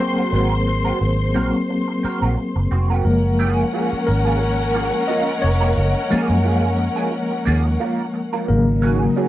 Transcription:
Already playing: F#3 A#3 G#4 A#4 C5 C6
0.00 C4 F#4 C5
0.17 C4 F#4 A#4
0.32 G#1 C4 F#4 A#4
0.67 muted clean electric guitar stroke
0.84 C4 F#4 A#4
1.00 G#1, muted clean electric guitar stroke
1.34 A#1 F#3 A#3 C4 F#4 A#4
1.53 muted clean electric guitar stroke
1.69 muted clean electric guitar stroke
1.88 muted clean electric guitar stroke
2.03 C4 F#4 A#4, muted fingered electric bass stroke
2.22 A#1 C4 F#4 A#4
2.37 muted clean electric guitar stroke
2.56 F#1, muted clean electric guitar stroke
2.71 F1 C4 F#4 C5
2.90 C4 F#4 A#4
3.04 F#1 F3 G#3 A#3 C#4 A#4 F#5
3.39 A#3 F4 G#4
3.73 A#3 F4 G#4
3.93 muted fingered electric bass stroke
4.07 G#1 A#4, muted clean electric guitar stroke
4.25 A#3 F4 G#4
4.40 muted clean electric guitar stroke
4.59 muted clean electric guitar stroke
4.74 A#3 F4 G#4
4.93 muted clean electric guitar stroke
5.08 A#3 F4 A#4 D#5
5.42 F1 C#5, muted clean electric guitar stroke
5.61 A#3 F4 A#4
5.77 F#1
6.10 F3 G#3 A#3 F4 G#4, muted fingered electric bass stroke
6.30 F#2
6.44 A#3 F4 G#4
6.78 muted clean electric guitar stroke
6.96 A#3 F4 G#4
7.11 muted clean electric guitar stroke
7.31 muted clean electric guitar stroke
7.45 D#2 A#3 F4 G#4
7.65 muted clean electric guitar stroke
7.80 A#3 F4 A#4
8.14 muted clean electric guitar stroke
8.33 A#3 F4 A#4
8.48 G#1 C#3 F#3 G#3 A#3 D#4 A#4
8.82 C#4 F#4 G#4
9.16 C#4 F#4 G#4

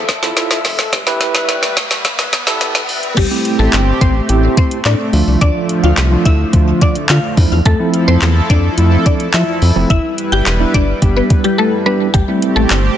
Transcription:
Already playing: F3 A4 E5, riser
0.09 kick, snare, closed hi-hat
0.23 F2 E4 F4 A4, snare, closed hi-hat
0.37 snare, closed hi-hat
0.51 snare
0.65 F1, snare, open hi-hat
0.79 snare
0.93 G1 G3 G4 B4, kick, snare, closed hi-hat
1.06 E4 G4 B4, snare
1.21 snare, closed hi-hat
1.35 G1, snare
1.49 G1, snare, closed hi-hat
1.63 snare
1.77 kick, snare, closed hi-hat
1.91 snare
2.05 kick, snare, closed hi-hat
2.19 E1, snare
2.33 kick, snare, closed hi-hat
2.47 G1 E4 G4 A4, snare, closed hi-hat
2.61 snare, closed hi-hat
2.75 snare
2.89 G1, open hi-hat
3.03 closed hi-hat
3.17 A1 G3 A3 C4 G4, kick, closed hi-hat, crash
3.31 A3 C4 E4 G4
3.45 closed hi-hat
3.59 A1 A3 A4
3.73 G1, snare, clap, closed hi-hat
4.01 A1 C4 C5, kick, closed hi-hat
4.29 A1 A3 C4 E4 G4, closed hi-hat
4.57 C4 C5, kick, closed hi-hat
4.71 closed hi-hat
4.85 A2 D4 D5, snare, clap, closed hi-hat
5.13 D2 D3 F3 A3 D4 F4, open hi-hat
5.27 C2
5.41 D2 D4 D5, kick, closed hi-hat
5.69 closed hi-hat
5.83 D2 F4 F5
5.97 C2, snare, clap, closed hi-hat
6.11 F3 A3 D4 F4
6.25 D2 E4 E5, kick, closed hi-hat
6.53 D2 F3 A3 D4 F4, kick, closed hi-hat
6.81 D4 D5, kick, closed hi-hat
6.95 closed hi-hat
7.09 D3 F4 F5, snare, clap, closed hi-hat
7.37 F2 F3 A3 D4 E4, kick, open hi-hat
7.52 E2
7.65 F2 F3 A3 E4 A4, kick, closed hi-hat
7.79 F3 A3 C4 E4
7.94 closed hi-hat
8.08 F2 C4 C5
8.22 E2, snare, clap, closed hi-hat
8.50 F2 D4 D5, kick, closed hi-hat
8.78 F2 F3 A3 C4 E4, closed hi-hat
9.06 D4 D5, kick, closed hi-hat
9.20 closed hi-hat
9.34 F3 E4 E5, snare, clap, closed hi-hat
9.62 F2, open hi-hat
9.76 F1 F3 A3 C4 E4
9.90 G1 G3 E4 B4 E5, kick, closed hi-hat
10.18 closed hi-hat
10.32 G1 G4 G5
10.46 E1, snare, clap, closed hi-hat
10.60 G3 B3 D4 E4
10.74 G1 D4 D5, kick, closed hi-hat
11.02 G1 G3 B3 D4 G4, kick, closed hi-hat
11.17 B3 B4
11.30 kick, closed hi-hat
11.44 G3 G4, closed hi-hat
11.58 A3 A4
11.86 G3 B3 D4 G4 B4
12.14 A1 G3 A3 C4 G4, kick, closed hi-hat
12.28 G3 A3 C4 E4
12.42 closed hi-hat
12.56 A1 A3 A4
12.70 G1, snare, clap, closed hi-hat

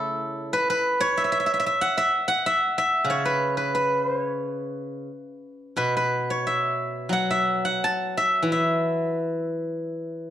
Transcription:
Already playing: C#3 A3 C#4 E4 A4 B4 C#5 E5
0.53 B4
0.70 B4
1.01 C#5
1.17 E5
1.24 E5
1.32 E5
1.40 E5
1.46 E5
1.54 E5
1.60 E5
1.66 E5
1.81 F#5
1.97 E5
2.28 F#5
2.46 E5
2.78 E5
3.04 C#3
3.10 C#5
3.25 B4
3.57 B4
3.75 B4
4.05 C5
4.24 C#5
5.77 B2 B4
5.97 B4
6.30 C#5
6.47 E5
7.09 F#3 F#5
7.31 E5
7.65 F#5
7.84 A5
8.17 E5
8.43 E3
8.52 E5

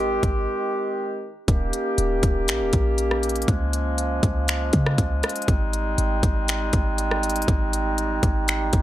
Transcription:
Already playing: G#1 D#3 G#3 C4 G4
0.23 G#1, kick, closed hi-hat
1.48 D#1 D#3 A#3 C#4 G4, kick, closed hi-hat
1.73 closed hi-hat
1.98 D#1, closed hi-hat
2.23 D#1, kick, closed hi-hat
2.48 A#1, finger snap, closed hi-hat
2.61 D#1
2.73 A#1, kick, closed hi-hat
2.98 closed hi-hat
3.11 cross-stick
3.23 closed hi-hat
3.29 closed hi-hat
3.36 closed hi-hat
3.42 closed hi-hat
3.48 C#2 F3 G#3, kick, closed hi-hat
3.73 closed hi-hat
3.98 closed hi-hat
4.23 C#2, kick, closed hi-hat
4.48 finger snap, closed hi-hat
4.73 C#3, kick, closed hi-hat
4.86 cross-stick
4.98 C#2, kick, closed hi-hat
5.23 cross-stick, closed hi-hat
5.29 closed hi-hat
5.36 closed hi-hat
5.42 closed hi-hat
5.48 G#1 G3 C4 D#4, kick, closed hi-hat
5.73 closed hi-hat
5.98 G#1, closed hi-hat
6.23 G#1, kick, closed hi-hat
6.48 finger snap, closed hi-hat
6.73 G#1, kick, closed hi-hat
6.98 closed hi-hat
7.11 cross-stick
7.23 closed hi-hat
7.30 closed hi-hat
7.36 closed hi-hat
7.42 closed hi-hat
7.48 G#1, kick, closed hi-hat
7.73 closed hi-hat
7.98 closed hi-hat
8.23 G#1, kick, closed hi-hat
8.48 finger snap, closed hi-hat
8.73 G#1, kick, closed hi-hat

